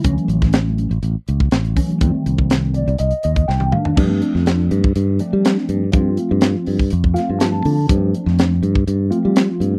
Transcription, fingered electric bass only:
0.05 D2
0.17 muted fingered electric bass stroke
0.28 A1
0.91 A1
1.03 A1
1.28 C#2
1.52 A1
1.91 muted fingered electric bass stroke
2.01 F2
2.15 muted fingered electric bass stroke
2.26 C2
2.88 C2
3.00 C2
3.25 D#2
3.49 C2
3.86 muted fingered electric bass stroke
3.97 G2
4.35 F2
4.71 G2
4.96 G2
5.33 G3
5.69 G2
5.94 G2
6.31 G2
6.67 G2
6.93 F2
7.30 G2
7.65 D3
7.90 G2
8.26 F2
8.63 G2
8.87 G2
9.25 G3
9.60 G2

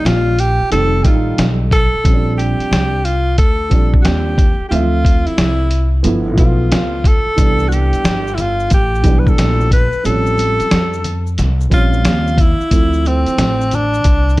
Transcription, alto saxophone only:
0.06 F4
0.40 G4
0.72 A4
1.03 F4 G4
1.73 A4
2.34 G4 A4
3.05 F4
3.39 A4
4.02 F#4 G4
4.69 F4 G4
5.27 E4
6.39 F4
7.07 A4
7.69 F#4
7.73 G4
8.35 E4
8.41 F4
8.74 G4
9.19 B4
9.29 A4
9.73 B4
10.06 A4
11.74 F4
12.41 E4
13.08 C4
13.75 D4

